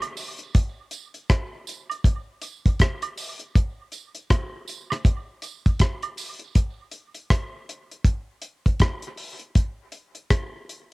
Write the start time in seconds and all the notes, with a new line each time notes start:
0.02 closed hi-hat, high woodblock
0.17 open hi-hat, tambourine
0.39 closed hi-hat
0.55 kick, closed hi-hat
0.91 closed hi-hat, tambourine
1.14 closed hi-hat
1.30 kick, cross-stick, closed hi-hat
1.67 closed hi-hat, tambourine
1.90 closed hi-hat, high woodblock
2.04 kick, closed hi-hat
2.42 closed hi-hat, tambourine
2.66 kick, closed hi-hat
2.79 kick, cross-stick, closed hi-hat
3.02 closed hi-hat, high woodblock
3.17 open hi-hat, tambourine
3.39 closed hi-hat
3.55 kick, closed hi-hat
3.92 closed hi-hat, tambourine
4.15 closed hi-hat
4.30 kick, cross-stick, closed hi-hat
4.68 closed hi-hat, tambourine
4.90 cross-stick, closed hi-hat, high woodblock
5.05 kick, closed hi-hat
5.42 closed hi-hat, tambourine
5.66 kick, closed hi-hat
5.79 kick, cross-stick, closed hi-hat
6.02 closed hi-hat, high woodblock
6.17 open hi-hat, tambourine
6.39 closed hi-hat
6.55 kick, closed hi-hat
6.92 closed hi-hat
7.15 closed hi-hat
7.30 kick, cross-stick, closed hi-hat
7.69 closed hi-hat
7.92 closed hi-hat
8.05 kick, closed hi-hat
8.42 closed hi-hat
8.66 kick, closed hi-hat
8.80 kick, cross-stick, closed hi-hat
9.02 closed hi-hat
9.17 open hi-hat
9.40 closed hi-hat
9.55 kick, closed hi-hat
9.92 closed hi-hat
10.15 closed hi-hat
10.30 kick, cross-stick, closed hi-hat
10.69 closed hi-hat